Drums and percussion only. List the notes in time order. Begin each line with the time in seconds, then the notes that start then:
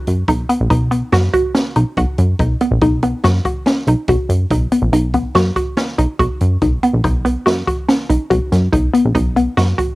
0.07 closed hi-hat
0.28 kick, closed hi-hat
0.49 closed hi-hat
0.70 kick, closed hi-hat
0.91 closed hi-hat
1.12 snare, closed hi-hat
1.34 kick, closed hi-hat
1.55 snare, closed hi-hat
1.76 closed hi-hat
1.97 kick, closed hi-hat
2.18 closed hi-hat
2.39 kick, closed hi-hat
2.61 closed hi-hat
2.81 kick, closed hi-hat
3.02 closed hi-hat
3.24 snare, closed hi-hat
3.45 kick, closed hi-hat
3.66 snare, closed hi-hat
3.87 closed hi-hat
4.08 kick, closed hi-hat
4.29 closed hi-hat
4.50 kick, closed hi-hat
4.72 closed hi-hat
4.93 closed hi-hat
5.14 kick, closed hi-hat
5.35 snare, closed hi-hat
5.56 kick, closed hi-hat
5.77 snare, closed hi-hat
5.98 closed hi-hat
6.20 kick, closed hi-hat
6.40 closed hi-hat
6.62 kick, closed hi-hat
6.83 closed hi-hat
7.04 kick, closed hi-hat
7.25 closed hi-hat
7.47 snare, closed hi-hat
7.67 kick, closed hi-hat
7.89 snare, closed hi-hat
8.10 closed hi-hat
8.31 kick, closed hi-hat
8.52 snare, closed hi-hat
8.73 kick, closed hi-hat
8.94 closed hi-hat
9.15 kick, closed hi-hat
9.37 closed hi-hat
9.57 snare, closed hi-hat
9.79 kick, closed hi-hat